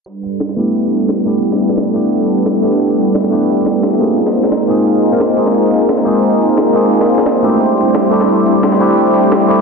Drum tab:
HH |x-x-x-x-o-xxxxx-|x-x-x-x-x-x-x-x-|x-x-x-x-o-xxxxx-|x-x-x-x-x-x-x-x-|
SD |----oo------o---|-o-oo-------o--o|----oo----o-o---|-o-oo-------o--o|

HH |x-x-x-x-o-xxxxx-|x-x-x-x-x-x-x-x-|x-x-x-x-o-xxxxx-|
SD |----oo------o---|-o-oo-------o--o|----oo------o---|